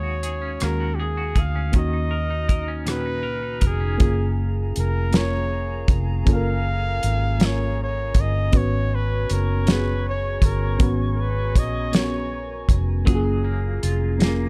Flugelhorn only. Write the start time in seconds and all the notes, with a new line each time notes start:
Already playing: C#5
0.63 A#4
0.95 G4
1.02 G#4
1.39 F5
1.77 D#5
2.91 B4
3.66 G#4
4.79 A#4
5.17 C#5
6.33 F5
7.45 C#5
7.83 C#5
8.20 D#5
8.57 C#5
8.95 B4
9.33 A#4
9.71 B4
10.09 C#5
10.45 A#4
11.14 A#4
11.21 B4
11.58 D#5
11.95 C#5